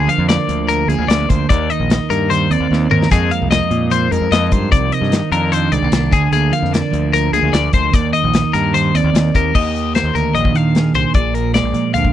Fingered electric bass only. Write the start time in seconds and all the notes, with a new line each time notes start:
0.18 F2
0.49 D2
0.88 D2
0.98 D2
1.09 D2
1.30 D2
1.50 D#2
1.80 A#1
2.10 G2
2.50 D#2
2.60 D#2
2.71 D#2
2.91 D#2
3.11 F2
3.42 C2
3.71 A#2
4.12 F2
4.21 F2
4.31 F2
4.51 G2
4.72 C2
5.01 G2
5.32 F2
5.72 C2
5.82 C2
5.92 C2
6.12 D2
6.32 D2
6.62 F2
6.93 D2
7.33 D2
7.43 D2
7.53 D2
7.73 D2
7.93 D#2
8.24 A#1
8.54 G2
8.94 D#2
9.04 D#2
9.14 D#2
9.35 D#2
9.55 D#2
10.04 D#2
10.15 D2
10.34 A#1
10.54 D#3
10.94 C2
11.14 A#1
11.63 A#1
11.73 A#2
11.95 D2